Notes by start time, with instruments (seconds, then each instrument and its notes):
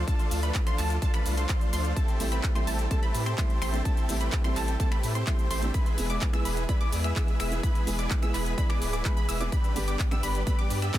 Already playing: analog synth pad F4 A4 D5 A5
0.07 supersaw synth F3 A3 D4 F4 A4, synth pluck A5, kick, closed hi-hat, shaker
0.19 closed hi-hat, shaker
0.31 sub bass D2, open hi-hat, shaker
0.43 supersaw synth F3 A3 D4 F4 B4, synth pluck B5, closed hi-hat, shaker
0.55 kick, clap, closed hi-hat, shaker
0.66 supersaw synth F3 A3 D4 F4 C5, synth pluck C6, finger snap, closed hi-hat, shaker
0.78 sub bass D2, supersaw synth F3 A3 D4 F4 A4, synth pluck A5, clap, open hi-hat, shaker
0.90 closed hi-hat, shaker
1.02 supersaw synth F3 A3 D4 F4 A4, synth pluck A5, kick, closed hi-hat, shaker
1.14 supersaw synth F3 A3 D4 F4 B4, synth pluck B5, finger snap, closed hi-hat, shaker
1.26 sub bass C2, open hi-hat, shaker
1.37 supersaw synth F3 A3 D4 F4 C5, synth pluck C6, closed hi-hat, shaker
1.49 supersaw synth F3 A3 D4 F4 C5, synth pluck C6, finger snap, kick, clap, closed hi-hat, shaker
1.61 closed hi-hat, shaker
1.73 sub bass D2, supersaw synth F3 A3 D4 F4 C5, synth pluck C6, open hi-hat, shaker
1.85 closed hi-hat, shaker
1.96 supersaw synth A3 C4 E4 G4 A4, analog synth pad G4 C5 E5, synth pluck A5, kick, closed hi-hat, shaker
2.08 closed hi-hat, shaker
2.19 sub bass A1, felt piano C3 G3 A3 E4, open hi-hat, shaker
2.32 supersaw synth A3 C4 E4 G4 B4, synth pluck B5, closed hi-hat, shaker
2.44 kick, clap, closed hi-hat, shaker
2.55 felt piano C3 G3 A3 E4, supersaw synth A3 C4 E4 G4 C5, synth pluck C6, finger snap, closed hi-hat, shaker
2.67 sub bass A1, supersaw synth A3 C4 E4 G4 A4, synth pluck A5, open hi-hat, shaker
2.79 closed hi-hat, shaker
2.90 felt piano C3 G3 A3 A4, supersaw synth A3 C4 E4 G4 A4, synth pluck A5, kick, closed hi-hat, shaker
3.03 supersaw synth A3 C4 E4 G4 B4, synth pluck B5, closed hi-hat
3.14 sub bass A2, open hi-hat, shaker
3.26 supersaw synth A3 C4 E4 G4 C5, synth pluck C6, finger snap, closed hi-hat, shaker
3.38 felt piano C3 G3 A3 E4, supersaw synth A3 C4 E4 G4 C5, synth pluck C6, kick, clap, closed hi-hat, shaker
3.50 closed hi-hat
3.62 sub bass A1, supersaw synth A3 C4 E4 G4 C5, synth pluck C6, finger snap, open hi-hat, shaker
3.73 felt piano C3 G3 A3 D4, closed hi-hat, shaker
3.85 supersaw synth A3 C4 E4 G4 A4, synth pluck A5, kick, closed hi-hat, shaker
3.97 closed hi-hat, shaker
4.08 sub bass A1, felt piano C3 G3 A3 E4, open hi-hat, shaker
4.21 supersaw synth A3 C4 E4 G4 B4, synth pluck B5, closed hi-hat, shaker
4.32 kick, clap, closed hi-hat, shaker
4.44 felt piano C3 G3 A3 E4, supersaw synth A3 C4 E4 G4 C5, synth pluck C6, finger snap, closed hi-hat, shaker
4.56 sub bass A1, supersaw synth A3 C4 E4 G4 A4, synth pluck A5, clap, open hi-hat, shaker
4.68 closed hi-hat, shaker
4.79 felt piano C3 G3 A3 A4, supersaw synth A3 C4 E4 G4 A4, synth pluck A5, kick, closed hi-hat, shaker
4.92 supersaw synth A3 C4 E4 G4 B4, synth pluck B5, finger snap, closed hi-hat
5.03 sub bass A2, open hi-hat, shaker
5.15 supersaw synth A3 C4 E4 G4 C5, synth pluck C6, closed hi-hat, shaker
5.27 felt piano C3 G3 A3 E4, supersaw synth A3 C4 E4 G4 C5, synth pluck C6, finger snap, kick, clap, closed hi-hat, shaker
5.39 closed hi-hat, shaker
5.51 sub bass A1, supersaw synth A3 C4 E4 G4 C5, synth pluck C6, open hi-hat, shaker
5.62 felt piano C3 G3 A3 D4, closed hi-hat, shaker
5.74 supersaw synth G#3 B3 E4 G#4 B4, analog synth pad G#4 B4 B5, synth pluck B5, kick, closed hi-hat, shaker
5.86 closed hi-hat, shaker
5.97 sub bass E1, felt piano E3 G#3 B3 G#4, open hi-hat, shaker
6.10 supersaw synth G#3 B3 E4 G#4 D5, synth pluck D6, closed hi-hat, shaker
6.21 kick, clap, closed hi-hat, shaker
6.33 felt piano E3 G#3 B3 G#4, supersaw synth G#3 B3 E4 G#4 E5, synth pluck E6, finger snap, closed hi-hat, shaker
6.45 sub bass E1, supersaw synth G#3 B3 E4 G#4 B4, synth pluck B5, open hi-hat, shaker
6.57 closed hi-hat, shaker
6.68 felt piano E3 G#3 B3 D5, supersaw synth G#3 B3 E4 G#4 B4, synth pluck B5, kick, closed hi-hat, shaker
6.81 supersaw synth G#3 B3 E4 G#4 D5, synth pluck D6, closed hi-hat
6.92 sub bass E2, open hi-hat, shaker
7.04 supersaw synth G#3 B3 E4 G#4 E5, synth pluck E6, finger snap, closed hi-hat, shaker
7.16 felt piano E3 G#3 B3 G#4, supersaw synth G#3 B3 E4 G#4 E5, synth pluck E6, kick, clap, closed hi-hat, shaker
7.28 closed hi-hat
7.40 sub bass E1, supersaw synth G#3 B3 E4 G#4 E5, synth pluck E6, finger snap, open hi-hat, shaker
7.51 felt piano E3 G#3 B3 E4, closed hi-hat, shaker
7.63 supersaw synth G#3 B3 E4 G#4 B4, synth pluck B5, kick, closed hi-hat, shaker
7.75 closed hi-hat, shaker
7.86 sub bass E1, felt piano E3 G#3 B3 G#4, open hi-hat, shaker
7.99 supersaw synth G#3 B3 E4 G#4 D5, synth pluck D6, closed hi-hat, shaker
8.11 kick, clap, closed hi-hat, shaker
8.22 felt piano E3 G#3 B3 G#4, supersaw synth G#3 B3 E4 G#4 E5, synth pluck E6, finger snap, closed hi-hat, shaker
8.34 sub bass E1, supersaw synth G#3 B3 E4 G#4 B4, synth pluck B5, clap, open hi-hat, shaker
8.46 closed hi-hat, shaker
8.57 felt piano E3 G#3 B3 D5, supersaw synth G#3 B3 E4 G#4 B4, synth pluck B5, kick, closed hi-hat, shaker
8.69 supersaw synth G#3 B3 E4 G#4 D5, synth pluck D6, finger snap, closed hi-hat
8.81 sub bass D1, open hi-hat, shaker
8.93 supersaw synth G#3 B3 E4 G#4 D5, synth pluck D6, closed hi-hat, shaker
9.04 felt piano E3 G#3 B3 G#4, supersaw synth G#3 B3 E4 G#4 B4, synth pluck B5, finger snap, kick, clap, closed hi-hat, shaker
9.17 supersaw synth G#3 B3 E4 G#4 B4, synth pluck B5, closed hi-hat, shaker
9.29 sub bass E1, supersaw synth G#3 B3 E4 G#4 E5, synth pluck E6, open hi-hat, shaker
9.40 felt piano E3 G#3 B3 E4, supersaw synth G#3 B3 E4 G#4 D5, synth pluck D6, closed hi-hat, shaker
9.52 supersaw synth G3 B3 D4 G4 B4, analog synth pad G4 D5, synth pluck B5, kick, closed hi-hat, shaker
9.64 closed hi-hat, shaker
9.75 sub bass G1, felt piano G2 D3 G3 B3 G4, open hi-hat, shaker
9.88 supersaw synth G3 B3 D4 G4 D5, synth pluck D6, closed hi-hat, shaker
9.99 kick, clap, closed hi-hat, shaker
10.11 felt piano G2 D3 G3 B3 G4, supersaw synth G3 B3 D4 G4 E5, synth pluck E6, finger snap, closed hi-hat, shaker
10.23 sub bass G1, supersaw synth G3 B3 D4 G4 B4, synth pluck B5, open hi-hat, shaker
10.35 closed hi-hat, shaker
10.46 felt piano G2 D3 G3 B3 B4, supersaw synth G3 B3 D4 G4 B4, synth pluck B5, kick, closed hi-hat, shaker
10.59 supersaw synth G3 B3 D4 G4 D5, synth pluck D6, closed hi-hat
10.70 sub bass G2, open hi-hat, shaker
10.82 supersaw synth G3 B3 D4 G4 E5, synth pluck E6, finger snap, closed hi-hat, shaker
10.93 felt piano G2 D3 G3 B3 G4, supersaw synth G3 B3 D4 G4 E5, synth pluck E6, kick, clap, closed hi-hat, shaker